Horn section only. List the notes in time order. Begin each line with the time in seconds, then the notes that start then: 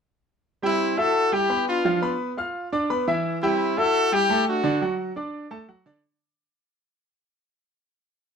0.63 C4 E4
0.99 F#4 A4
1.33 E4 G4
1.68 D4 F4
3.42 C4 E4
3.77 F#4 A4
4.12 E4 G4
4.47 D4 F#4